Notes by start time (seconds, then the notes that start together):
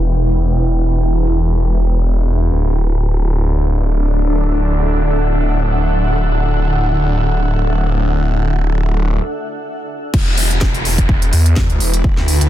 Already playing: E1 E4 B4 G5
2.52 D1 D4
2.74 A4
3.02 E5
3.22 F#5
10.14 E1 E4, kick, crash, downlifter
10.27 E1 B4
10.38 open hi-hat
10.51 closed hi-hat
10.61 kick, snare
10.74 E1, closed hi-hat
10.85 G5, open hi-hat
10.98 kick, closed hi-hat
11.09 kick
11.22 E1, closed hi-hat
11.33 E2, open hi-hat
11.46 closed hi-hat
11.56 kick, snare
11.70 D2, closed hi-hat
11.80 E1, open hi-hat
11.94 closed hi-hat
12.04 kick
12.17 D2, snare
12.28 open hi-hat
12.41 D2, closed hi-hat